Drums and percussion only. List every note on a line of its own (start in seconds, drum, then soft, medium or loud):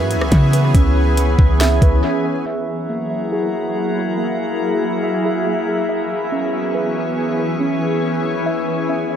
0.11 closed hi-hat medium
0.21 cross-stick loud
0.32 kick medium
0.32 closed hi-hat medium
0.53 closed hi-hat medium
0.75 kick loud
0.75 closed hi-hat medium
1.17 closed hi-hat medium
1.39 kick loud
1.61 snare loud
1.61 closed hi-hat medium
1.82 kick medium
1.82 closed hi-hat medium